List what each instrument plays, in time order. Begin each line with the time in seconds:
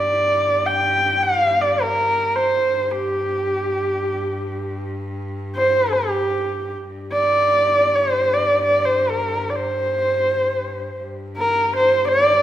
Already playing: cello G2, horsehead fiddle D5
0.66 horsehead fiddle G5
1.23 horsehead fiddle F5
1.61 horsehead fiddle D5
1.82 horsehead fiddle A#4
2.35 horsehead fiddle C5
2.67 cello G2
2.91 horsehead fiddle G4
5.56 horsehead fiddle C5
5.93 horsehead fiddle G4
6.83 cello G2
7.13 horsehead fiddle D5
7.95 horsehead fiddle C5
8.33 horsehead fiddle D5
8.64 horsehead fiddle D5
8.85 horsehead fiddle C5
9.09 horsehead fiddle A#4
9.49 horsehead fiddle D5
9.55 horsehead fiddle C5
10.99 cello G2
11.37 horsehead fiddle A#4
11.76 horsehead fiddle C5
12.08 horsehead fiddle D5